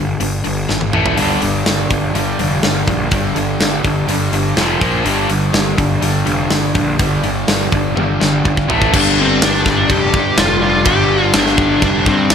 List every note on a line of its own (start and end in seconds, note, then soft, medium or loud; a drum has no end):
0.00 0.15 G1 medium
0.00 0.18 G2 medium
0.00 0.18 D3 medium
0.20 0.40 G1 medium
0.20 0.42 G2 medium
0.20 0.43 D3 medium
0.20 open hi-hat medium
0.44 0.65 G1 medium
0.44 0.66 G2 medium
0.44 0.67 D3 medium
0.44 open hi-hat soft
0.69 0.94 G#1 medium
0.69 0.91 G2 medium
0.69 0.91 D3 medium
0.69 snare soft
0.81 high tom soft
0.93 1.13 A1 medium
0.93 1.17 A2 medium
0.93 1.17 E3 medium
0.93 1.17 A3 medium
0.93 mid tom medium
1.06 floor tom medium
1.17 1.37 G1 medium
1.17 1.41 G2 medium
1.17 1.41 D3 medium
1.17 1.41 G3 medium
1.17 open hi-hat medium
1.42 1.62 G1 medium
1.42 1.64 G2 medium
1.42 1.65 D3 medium
1.42 open hi-hat soft
1.66 1.86 G1 medium
1.66 1.89 G2 medium
1.66 1.89 D3 medium
1.66 snare loud
1.66 open hi-hat medium
1.90 2.10 G1 medium
1.90 2.13 G2 medium
1.90 2.13 D3 medium
1.90 kick medium
1.90 open hi-hat soft
2.15 2.34 G1 medium
2.15 2.37 G2 medium
2.15 2.37 D3 medium
2.15 3.12 G3 medium
2.15 open hi-hat medium
2.39 2.59 F1 medium
2.39 2.61 G2 medium
2.39 2.61 D3 medium
2.39 open hi-hat soft
2.63 2.83 G1 medium
2.63 2.86 G2 medium
2.63 2.86 D3 medium
2.63 snare medium
2.63 open hi-hat medium
2.87 3.07 A#1 medium
2.87 3.10 G2 medium
2.87 3.10 D3 medium
2.87 kick medium
2.87 open hi-hat soft
3.11 3.31 G1 medium
3.11 3.34 G2 medium
3.11 3.34 D3 medium
3.11 4.09 G3 medium
3.11 kick loud
3.11 open hi-hat medium
3.35 3.55 G1 medium
3.35 3.58 G2 medium
3.35 3.59 D3 medium
3.35 open hi-hat medium
3.60 3.80 G1 medium
3.60 3.83 G2 medium
3.60 3.83 D3 medium
3.60 snare medium
3.60 open hi-hat medium
3.84 4.04 G1 medium
3.84 4.07 G2 medium
3.84 4.07 D3 medium
3.84 kick medium
3.84 open hi-hat soft
4.08 4.28 G1 medium
4.08 4.31 G2 medium
4.08 4.31 D3 medium
4.08 4.57 G3 medium
4.08 open hi-hat medium
4.32 4.52 G1 medium
4.32 4.55 G2 medium
4.32 4.55 D3 medium
4.32 open hi-hat medium
4.56 4.76 F1 medium
4.56 4.80 F2 medium
4.56 4.80 C3 medium
4.56 4.80 F3 medium
4.56 snare medium
4.56 open hi-hat medium
4.81 5.01 A#1 medium
4.81 5.04 A#2 medium
4.81 5.05 F3 medium
4.81 5.05 A#3 medium
4.81 kick medium
4.81 open hi-hat soft
5.05 5.25 G1 loud
5.05 5.28 G2 medium
5.05 5.29 D3 medium
5.05 5.29 G3 medium
5.05 open hi-hat medium
5.29 5.49 G1 medium
5.29 5.52 G2 medium
5.29 5.52 D3 medium
5.29 open hi-hat medium
5.53 5.73 G1 medium
5.53 5.76 G2 medium
5.53 5.76 D3 medium
5.53 snare loud
5.53 open hi-hat medium
5.77 5.98 G1 medium
5.77 6.00 G2 medium
5.77 6.00 D3 medium
5.77 kick medium
5.77 open hi-hat medium
6.02 6.22 G1 medium
6.02 6.24 G2 medium
6.02 6.24 D3 medium
6.02 6.99 G3 medium
6.02 open hi-hat medium
6.26 6.46 F1 medium
6.26 6.49 G2 medium
6.26 6.49 D3 medium
6.26 open hi-hat soft
6.50 6.70 G1 medium
6.50 6.73 G2 medium
6.50 6.73 D3 medium
6.50 snare medium
6.50 open hi-hat medium
6.75 6.95 A#1 medium
6.75 6.97 G2 medium
6.75 6.97 D3 medium
6.75 kick medium
6.75 open hi-hat soft
6.99 7.19 G1 medium
6.99 7.22 G2 medium
6.99 7.22 D3 medium
6.99 7.96 G3 loud
6.99 kick loud
6.99 open hi-hat medium
7.24 7.43 G1 medium
7.24 7.46 G2 medium
7.24 7.46 D3 medium
7.24 open hi-hat soft
7.47 7.67 G1 medium
7.47 7.70 G2 medium
7.47 7.70 D3 medium
7.47 snare loud
7.47 open hi-hat medium
7.72 7.92 G1 medium
7.72 7.94 G2 medium
7.72 7.94 D3 medium
7.72 kick medium
7.72 open hi-hat soft
7.96 8.16 G1 medium
7.96 8.18 G2 medium
7.96 8.18 D3 medium
7.96 8.68 G3 medium
7.96 high tom medium
8.20 8.40 G1 medium
8.20 8.42 G2 medium
8.20 8.43 D3 medium
8.20 snare medium
8.45 8.70 G1 medium
8.45 8.67 G2 medium
8.45 8.67 D3 medium
8.45 kick medium
8.57 kick medium
8.69 8.89 A1 medium
8.69 8.92 A2 medium
8.69 8.92 E3 medium
8.69 8.92 A3 medium
8.69 floor tom medium
8.82 kick medium
8.92 9.40 G1 loud
8.92 10.84 G2 medium
8.92 10.85 D3 medium
8.92 10.87 G3 loud
8.92 9.19 D4 loud
8.92 kick loud
8.92 crash loud
8.92 crash medium
9.19 9.43 C4 medium
9.41 9.88 G1 loud
9.41 9.92 D4 medium
9.41 snare loud
9.41 crash medium
9.54 snare soft
9.66 kick medium
9.66 snare soft
9.90 10.13 F1 loud
9.90 10.40 G4 loud
9.90 kick medium
9.90 crash medium
10.14 10.37 G2 medium
10.14 kick loud
10.38 10.84 F1 medium
10.38 10.62 F4 medium
10.38 snare loud
10.38 crash medium
10.60 10.83 G2 medium
10.60 10.85 D3 medium
10.60 10.87 G3 loud
10.60 10.87 F4 medium
10.85 11.32 G1 loud
10.85 12.35 G2 medium
10.85 12.35 D3 loud
10.85 12.35 G3 loud
10.85 11.31 G4 loud
10.85 kick loud
10.85 crash medium
11.34 11.80 G1 loud
11.34 11.82 D4 loud
11.34 snare loud
11.34 crash medium
11.46 snare soft
11.58 kick loud
11.82 12.05 F1 loud
11.82 12.05 D4 loud
11.82 kick loud
11.82 crash medium
12.06 12.29 G2 medium
12.06 12.32 C4 medium
12.06 kick loud
12.30 12.35 F1 loud
12.30 12.35 D4 loud
12.30 snare loud
12.30 crash medium